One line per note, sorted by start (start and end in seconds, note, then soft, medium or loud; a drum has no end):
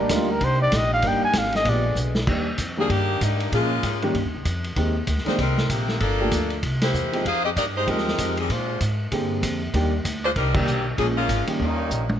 0.00 2.25 A#3 medium
0.00 1.63 D4 medium
0.00 0.15 D4 medium
0.00 1.63 D#4 medium
0.00 1.64 G4 medium
0.09 0.40 D2 medium
0.09 0.26 G3 medium
0.09 0.27 A#3 medium
0.09 0.27 D4 medium
0.09 0.27 D#4 medium
0.09 0.27 A#4 medium
0.09 kick soft
0.09 snare medium
0.09 hi-hat pedal medium
0.09 ride medium
0.13 0.32 F4 medium
0.31 0.46 A#4 loud
0.40 0.71 C2 medium
0.40 0.61 C5 loud
0.40 kick soft
0.40 ride medium
0.62 0.78 D5 loud
0.71 1.02 A#1 medium
0.71 kick soft
0.71 snare medium
0.71 hi-hat pedal medium
0.71 ride medium
0.76 0.93 D#5 loud
0.94 1.09 F5 loud
1.02 1.20 G1 medium
1.02 1.20 G3 medium
1.02 1.20 A#3 medium
1.02 1.20 D4 medium
1.02 1.20 D#4 medium
1.02 1.20 A#4 medium
1.02 kick soft
1.02 ride medium
1.07 1.24 G5 medium
1.22 1.39 G#5 loud
1.22 muted upright bass stroke soft
1.33 1.64 G#1 medium
1.33 kick soft
1.33 snare medium
1.33 hi-hat pedal medium
1.33 ride medium
1.38 1.55 F5 loud
1.44 snare soft
1.52 1.71 D#5 loud
1.52 snare soft
1.52 ride soft
1.65 1.95 A#1 medium
1.65 2.27 D3 medium
1.65 1.82 G#3 medium
1.65 1.82 B3 soft
1.65 2.27 B3 medium
1.65 1.82 D4 soft
1.65 1.83 F4 medium
1.65 1.83 G4 medium
1.65 2.27 G#4 medium
1.65 kick soft
1.65 ride medium
1.69 1.98 D5 medium
1.95 2.26 B1 loud
1.95 hi-hat pedal medium
2.15 snare medium
2.27 2.57 D#2 medium
2.27 2.44 D#3 medium
2.27 2.44 G3 medium
2.27 2.44 A#3 medium
2.27 2.45 D4 medium
2.27 2.45 G4 medium
2.27 kick medium
2.27 crash medium
2.58 2.89 F2 medium
2.58 kick soft
2.58 hi-hat pedal medium
2.58 ride medium
2.77 2.88 D#3 medium
2.77 2.90 F3 medium
2.77 2.89 G3 medium
2.77 2.89 A#3 medium
2.77 2.90 A#3 medium
2.77 2.89 D4 medium
2.77 2.90 D4 medium
2.77 2.89 G4 medium
2.77 2.90 G#4 loud
2.89 3.20 G2 medium
2.89 3.22 D#3 medium
2.89 3.21 A#3 medium
2.89 3.22 D4 medium
2.89 3.22 G4 loud
2.89 kick soft
2.89 ride medium
3.21 3.51 G#2 medium
3.21 3.53 G3 medium
3.21 3.53 A#3 medium
3.21 3.53 D4 medium
3.21 3.53 D#4 medium
3.21 kick soft
3.21 hi-hat pedal medium
3.21 ride medium
3.40 ride medium
3.52 3.82 A#2 medium
3.52 3.69 F3 medium
3.52 3.69 G#3 medium
3.52 4.11 G#3 medium
3.52 3.70 A#3 medium
3.52 4.11 A#3 medium
3.52 3.70 C#4 medium
3.52 4.11 C#4 medium
3.52 4.11 F4 medium
3.52 3.70 G#4 medium
3.52 kick soft
3.52 ride medium
3.83 4.13 G#2 medium
3.83 kick soft
3.83 hi-hat pedal medium
3.83 ride medium
4.02 4.13 D#3 medium
4.02 4.13 G3 medium
4.02 4.14 A#3 medium
4.02 4.14 C#4 medium
4.02 4.14 G4 medium
4.02 ride soft
4.14 4.26 G2 medium
4.14 kick soft
4.14 ride medium
4.24 4.34 D#2 medium
4.34 4.44 C#2 medium
4.45 4.75 F2 medium
4.45 kick soft
4.45 hi-hat pedal medium
4.45 ride medium
4.64 ride soft
4.76 5.06 D#2 medium
4.76 4.93 D#3 medium
4.76 4.93 G#3 medium
4.76 4.94 A#3 medium
4.76 4.94 C4 medium
4.76 4.94 G4 medium
4.76 kick soft
4.76 ride medium
5.07 5.25 D2 medium
5.07 kick soft
5.07 hi-hat pedal soft
5.07 ride medium
5.18 snare soft
5.25 5.37 D#3 medium
5.25 5.37 G#3 medium
5.25 5.37 A#3 medium
5.25 5.38 A#3 medium
5.25 5.38 C4 medium
5.25 5.38 D4 medium
5.25 5.38 D#4 medium
5.25 5.38 G4 medium
5.25 5.38 C5 medium
5.25 muted upright bass stroke soft
5.25 snare soft
5.25 ride soft
5.38 5.69 C2 medium
5.38 5.68 G3 medium
5.38 5.68 C4 medium
5.38 5.68 D#4 medium
5.38 5.68 A#4 medium
5.38 kick soft
5.38 ride medium
5.58 snare medium
5.70 6.00 A#1 medium
5.70 6.01 D#3 medium
5.70 6.00 A#3 medium
5.70 6.01 C4 medium
5.70 6.01 G4 medium
5.70 kick soft
5.70 hi-hat pedal medium
5.70 ride medium
5.88 snare medium
6.00 6.31 G1 medium
6.00 6.59 F3 medium
6.00 6.59 A#3 medium
6.00 6.59 D4 medium
6.00 6.59 A4 loud
6.00 kick soft
6.00 ride medium
6.20 6.31 F3 medium
6.20 6.31 A3 medium
6.20 6.31 A#3 medium
6.20 6.31 D4 medium
6.20 6.31 G4 medium
6.31 6.62 D2 medium
6.31 kick soft
6.31 hi-hat pedal medium
6.31 ride medium
6.50 ride soft
6.63 6.93 C2 medium
6.63 kick soft
6.63 ride medium
6.81 7.23 A#3 medium
6.81 7.23 E4 medium
6.81 7.23 G4 medium
6.81 7.23 C5 medium
6.81 snare medium
6.81 ride medium
6.93 7.24 E2 medium
6.93 hi-hat pedal medium
7.12 7.24 F3 medium
7.12 7.24 G#3 medium
7.12 7.24 C4 medium
7.12 7.24 D#4 medium
7.12 7.25 G4 medium
7.12 ride medium
7.25 7.55 F2 medium
7.25 7.45 D#4 medium
7.25 7.43 G#4 medium
7.25 7.45 C5 medium
7.25 7.45 F5 medium
7.25 kick soft
7.25 ride medium
7.45 7.50 C4 medium
7.45 7.50 G4 medium
7.45 7.50 G#4 medium
7.45 7.50 D#5 medium
7.56 7.86 G2 medium
7.56 7.65 A#3 medium
7.56 7.65 D#4 medium
7.56 7.66 G4 medium
7.56 7.65 D5 medium
7.56 kick soft
7.56 hi-hat pedal medium
7.56 ride medium
7.76 7.87 G#3 medium
7.76 7.87 D#4 medium
7.76 7.87 G4 medium
7.76 7.87 C5 medium
7.86 8.18 D#2 medium
7.86 8.33 F3 medium
7.86 8.33 G#3 medium
7.86 8.38 G#3 medium
7.86 8.33 C4 medium
7.86 8.33 D#4 medium
7.86 8.38 D#4 medium
7.86 8.34 G4 medium
7.86 8.38 G4 medium
7.86 8.38 A#4 loud
7.86 kick soft
7.86 ride medium
7.98 snare soft
8.08 snare soft
8.18 8.49 F2 medium
8.18 kick soft
8.18 hi-hat pedal medium
8.18 ride medium
8.37 8.50 D#3 medium
8.37 8.50 G3 medium
8.37 8.50 C4 medium
8.37 8.50 G#4 medium
8.37 ride soft
8.49 8.80 A#2 medium
8.49 8.82 G#3 medium
8.49 8.82 D4 medium
8.49 8.82 F4 medium
8.49 8.81 C5 medium
8.49 kick soft
8.49 ride medium
8.80 9.11 G#2 medium
8.80 kick soft
8.80 hi-hat pedal medium
8.80 ride medium
9.12 9.42 G2 medium
9.12 9.58 D3 medium
9.12 9.58 A#3 medium
9.12 9.58 C4 medium
9.12 9.59 G4 medium
9.12 9.58 G#4 medium
9.12 kick soft
9.12 ride medium
9.42 9.73 F2 medium
9.42 kick soft
9.42 hi-hat pedal medium
9.42 ride medium
9.74 10.04 D#2 medium
9.74 9.91 D#3 medium
9.74 9.91 G3 medium
9.74 9.91 A#3 medium
9.74 9.91 D4 medium
9.74 9.91 G4 medium
9.74 kick soft
9.74 ride medium
10.05 10.35 D2 medium
10.05 kick soft
10.05 hi-hat pedal medium
10.05 ride medium
10.24 10.30 G#3 loud
10.24 10.30 D4 medium
10.24 10.29 F4 medium
10.24 10.30 C5 loud
10.36 10.66 C2 loud
10.36 10.54 G3 medium
10.36 10.54 D4 medium
10.36 10.54 D#4 medium
10.36 10.54 A#4 loud
10.36 kick soft
10.36 ride medium
10.54 10.65 D#3 medium
10.54 10.86 D#3 medium
10.54 10.66 G3 medium
10.54 10.86 A#3 medium
10.54 10.66 A#3 medium
10.54 10.66 D4 medium
10.54 10.86 D4 medium
10.54 10.66 G4 medium
10.54 10.86 G4 loud
10.54 kick loud
10.54 crash medium
10.67 10.97 B1 medium
10.67 hi-hat pedal medium
10.97 11.28 A#1 medium
10.97 11.06 F3 medium
10.97 11.15 F3 medium
10.97 11.15 G#3 medium
10.97 11.06 A#3 medium
10.97 11.15 A#3 medium
10.97 11.06 C#4 medium
10.97 11.15 C#4 medium
10.97 11.06 G#4 loud
10.97 11.15 G#4 medium
10.97 kick soft
10.97 ride medium
11.16 11.45 G#3 medium
11.16 11.46 A#3 medium
11.16 11.45 C#4 medium
11.16 11.46 F4 loud
11.29 11.46 G#1 medium
11.29 kick soft
11.29 hi-hat pedal medium
11.29 ride medium
11.47 11.58 D#3 medium
11.47 11.58 G3 medium
11.47 11.59 A#3 medium
11.47 11.59 C#4 medium
11.47 11.59 G4 medium
11.47 muted upright bass stroke soft
11.47 ride medium
11.59 11.89 D#2 medium
11.59 12.05 G2 medium
11.59 12.06 A#2 medium
11.59 12.05 D#3 medium
11.59 12.06 G3 medium
11.59 12.06 A#3 medium
11.59 12.06 C#4 medium
11.59 12.07 D#4 medium
11.59 kick soft
11.90 12.20 A#1 medium
11.90 hi-hat pedal soft
12.09 high tom medium